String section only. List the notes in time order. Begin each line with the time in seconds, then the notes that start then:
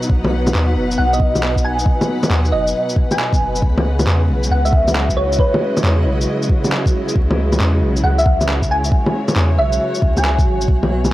Already playing: B2 F#3 D#4 B4 F#5
3.63 C#3
3.70 G#3
4.23 E4
4.49 D#5
8.24 C#5
10.69 B2
10.82 F#3
10.98 B4